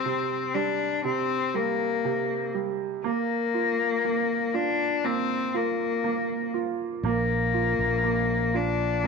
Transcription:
Already playing: C3 G3 C4
0.05 C3
0.54 G3 D4
1.04 C3 C4
1.54 G3 A#3
2.05 C3
2.54 G3
3.04 A#3
3.54 F4
4.05 A#3
4.54 D4 F4
5.04 A#3 C4
5.54 A#3 F4
6.04 A#3
6.54 F4
7.03 A#1 A#3
7.54 F4
7.79 A#1
8.04 A#3
8.54 D4 F4
9.04 A#3

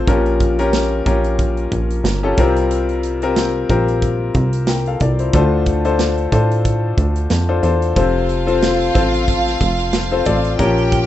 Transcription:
0.07 A#1 A#2 F3 C#4 F4 G4 A#4, kick, closed hi-hat
0.26 closed hi-hat
0.40 kick, closed hi-hat
0.59 C#4 F4 G4 A#4, closed hi-hat
0.73 snare, closed hi-hat
1.06 A#1 C#4 F4 G4 A#4, kick, closed hi-hat
1.24 closed hi-hat
1.39 kick, closed hi-hat
1.57 closed hi-hat
1.72 A#1, kick, closed hi-hat
1.91 closed hi-hat
2.04 G1, snare, closed hi-hat
2.23 C#4 F4 G4 A4
2.37 C2 C3 G3 C4 F4 G4 A#4, kick, closed hi-hat
2.56 closed hi-hat
2.71 closed hi-hat
2.89 closed hi-hat
3.03 closed hi-hat
3.22 C4 F4 G4 A#4, closed hi-hat
3.36 snare, closed hi-hat
3.70 A#1 C4 F4 G4 A#4, kick, closed hi-hat
3.88 closed hi-hat
4.02 kick, closed hi-hat
4.34 C2, kick, closed hi-hat
4.53 closed hi-hat
4.67 A#4 G5, snare, closed hi-hat
4.86 A4 F5, closed hi-hat
5.00 C2 F4 D5, kick, closed hi-hat
5.19 E4 C5, closed hi-hat
5.33 D2 D3 A3 D4 F4 A4 C5, kick, closed hi-hat
5.66 kick, closed hi-hat
5.85 D4 F4 A4 C5, closed hi-hat
5.99 snare, closed hi-hat
6.18 closed hi-hat
6.32 A2 D4 F4 A4 C5, kick, closed hi-hat
6.51 closed hi-hat
6.65 kick, closed hi-hat
6.97 D2, kick, closed hi-hat
7.16 closed hi-hat
7.30 F2, snare, closed hi-hat
7.49 D4 F4 A4 C5
7.63 E2 D4 F4 A4 C5, closed hi-hat
7.82 closed hi-hat
7.95 F1 C3 C4 F4 A4 C5 F5, kick, closed hi-hat
8.29 closed hi-hat
8.47 C4 F4 A4 C5, closed hi-hat
8.62 snare, closed hi-hat
8.81 closed hi-hat
8.94 A1 C4 F4 A4 C5, kick, closed hi-hat
9.14 closed hi-hat
9.28 kick, closed hi-hat
9.47 snare
9.61 F1, kick, closed hi-hat
9.79 closed hi-hat
9.93 snare, closed hi-hat
10.12 C4 F4 A4 C5
10.26 A1 C4 F4 A4 D5, kick, closed hi-hat
10.45 closed hi-hat
10.59 A#1 A#2 F3 C#4 F4 G4 A#4 G5, kick, closed hi-hat
10.78 closed hi-hat
10.92 kick, closed hi-hat

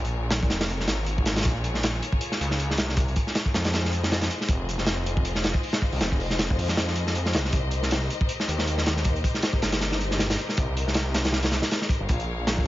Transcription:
Already playing: A#1 F4 G#4 A#4 C#5
0.05 closed hi-hat
0.31 snare, closed hi-hat
0.43 kick
0.50 F1, snare, closed hi-hat
0.61 snare, closed hi-hat
0.70 closed hi-hat
0.80 snare
0.87 G#1, snare, closed hi-hat
1.07 closed hi-hat
1.18 kick
1.26 snare, closed hi-hat
1.36 snare, closed hi-hat
1.41 snare, closed hi-hat
1.45 A#1, kick, closed hi-hat
1.64 closed hi-hat
1.75 snare
1.83 snare, closed hi-hat
2.03 closed hi-hat
2.12 kick
2.21 closed hi-hat
2.32 snare
2.41 C#2, closed hi-hat
2.51 snare
2.60 closed hi-hat
2.71 snare
2.78 C2, snare, closed hi-hat
2.89 snare
2.97 kick, closed hi-hat
3.08 closed hi-hat
3.16 kick, closed hi-hat
3.27 snare
3.35 snare, closed hi-hat
3.46 kick
3.54 F2, snare, closed hi-hat
3.65 snare, closed hi-hat
3.73 F4 C5 D#5, snare, closed hi-hat
3.85 snare
3.93 closed hi-hat
4.03 snare
4.12 snare, closed hi-hat
4.21 snare, closed hi-hat
4.31 closed hi-hat
4.41 snare
4.49 F1, kick, closed hi-hat
4.69 closed hi-hat
4.78 F1, snare
4.87 snare, closed hi-hat
5.06 closed hi-hat
5.17 kick
5.25 closed hi-hat
5.35 snare
5.44 snare, closed hi-hat
5.54 kick
5.63 open hi-hat
5.73 snare, closed hi-hat
5.82 kick
5.92 C2, open hi-hat
6.01 F1, snare, closed hi-hat
6.12 kick
6.20 open hi-hat
6.30 snare
6.39 snare, closed hi-hat
6.50 kick
6.58 F2, open hi-hat
6.69 snare
6.77 snare, closed hi-hat
6.88 snare
6.96 closed hi-hat
7.07 snare
7.15 closed hi-hat
7.26 snare
7.33 C2, snare, closed hi-hat
7.45 snare
7.52 C2 G4 A#4, kick, closed hi-hat
7.71 closed hi-hat
7.82 snare
7.91 snare, closed hi-hat
8.10 closed hi-hat
8.21 kick
8.29 closed hi-hat
8.40 snare
8.48 D#2, closed hi-hat
8.59 snare
8.67 closed hi-hat
8.78 snare
8.86 D#2, snare, closed hi-hat
8.97 snare
9.05 kick, closed hi-hat
9.16 closed hi-hat
9.24 kick, closed hi-hat
9.34 snare
9.42 snare, closed hi-hat
9.53 kick
9.62 G1, snare, closed hi-hat
9.72 snare, closed hi-hat
9.81 snare, closed hi-hat
9.92 snare
10.01 closed hi-hat
10.11 snare
10.19 snare, closed hi-hat
10.30 snare, closed hi-hat
10.39 closed hi-hat
10.49 snare
10.57 C2, kick, closed hi-hat
10.77 closed hi-hat
10.87 C2, snare
10.94 snare, closed hi-hat
11.14 snare, closed hi-hat
11.25 snare, closed hi-hat
11.33 snare, closed hi-hat
11.43 snare, closed hi-hat
11.52 snare, closed hi-hat
11.62 snare, closed hi-hat
11.71 snare, closed hi-hat
11.82 snare
11.89 kick, closed hi-hat
12.00 G1
12.09 A#1 G#4 C#5 F5, kick, closed hi-hat
12.20 closed hi-hat
12.47 snare, closed hi-hat
12.58 kick

